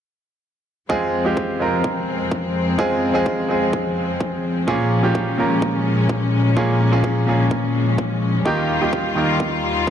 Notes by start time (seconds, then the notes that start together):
0.89 F2 F3 G#3 C4 F4 G#4, kick
1.25 G#3 C4 F4 G4
1.37 kick
1.59 G#3 C4 F4 A#4
1.84 kick
2.08 closed hi-hat
2.31 kick
2.55 closed hi-hat
2.78 G#3 C4 F4 G#4, kick
3.14 G#3 C4 F4 G#4
3.26 kick
3.48 G#3 C4 F4 G#4
3.73 kick
3.97 closed hi-hat
4.21 kick
4.44 closed hi-hat
4.56 closed hi-hat
4.67 A#2 G#3 A#3 C#4 F4 G#4, kick
5.03 A#2 A#3 C#4 F4 G4
5.15 kick
5.37 A#2 A#3 C#4 F4 A#4
5.62 kick
5.86 closed hi-hat
6.09 kick
6.21 closed hi-hat
6.33 closed hi-hat
6.45 closed hi-hat
6.56 A#2 A#3 C#4 F4 G#4, kick
6.80 closed hi-hat
6.92 A#2 A#3 C#4 F4 G#4
7.04 kick
7.26 A#2 A#3 C#4 F4 G#4, closed hi-hat
7.51 kick
7.75 closed hi-hat
7.87 closed hi-hat
7.98 kick
8.10 closed hi-hat
8.22 closed hi-hat
8.34 closed hi-hat
8.45 D#2 D#3 G3 A#3 D#4 F4 G4, kick
8.69 closed hi-hat
8.81 D#3 A#3 D#4 F4 G4
8.93 kick
9.05 closed hi-hat
9.15 D#3 A#3 D#4 F4 A#4, closed hi-hat
9.28 closed hi-hat
9.40 kick
9.52 closed hi-hat
9.64 closed hi-hat
9.76 closed hi-hat